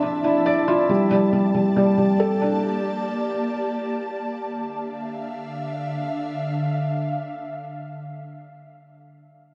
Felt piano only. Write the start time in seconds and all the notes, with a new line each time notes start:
Already playing: D4 F4 D5
0.03 D4
0.24 D4
0.46 D5
0.68 F4
0.89 G3
1.11 G3
1.33 G3
1.54 G3
1.76 G3
1.98 G3
2.20 A4
2.42 D4